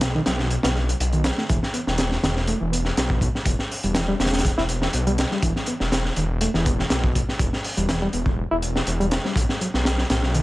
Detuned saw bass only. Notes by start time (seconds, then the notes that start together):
Already playing: B1
0.27 B1
0.64 B1
1.00 B1
1.50 E1
1.87 E1
2.23 E1
2.61 E1
2.97 B1
3.46 E1
3.84 E1
4.20 E1
4.57 E1
4.94 B1
5.42 E1
5.80 E1
6.17 E1
6.54 E1
6.91 B1
7.39 E1
7.77 E1
8.13 E1
8.51 E1
8.87 E1
9.36 B1
9.74 B1
10.10 B1